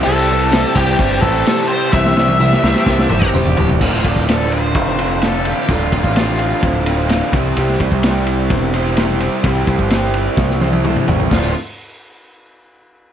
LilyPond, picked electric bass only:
\new Staff \with { instrumentName = "Picked electric bass" } { \clef bass \time 4/4 \key d \minor \tempo 4 = 128 c,4. c,8 g,,8 a,,8 r4 | c,8 c,4 c,16 r16 c,8 g,,8 e,,8 d,,8 | d,,8 d,,16 d,,4~ d,,16 f,,2 | d,,8 d,,16 a,,4~ a,,16 d,,4. c,8 |
c,8 c,16 c,4~ c,16 e,,2 | c,8 c,16 g,,4~ g,,16 c,4. a,,8 | d,,8 r2. r8 | }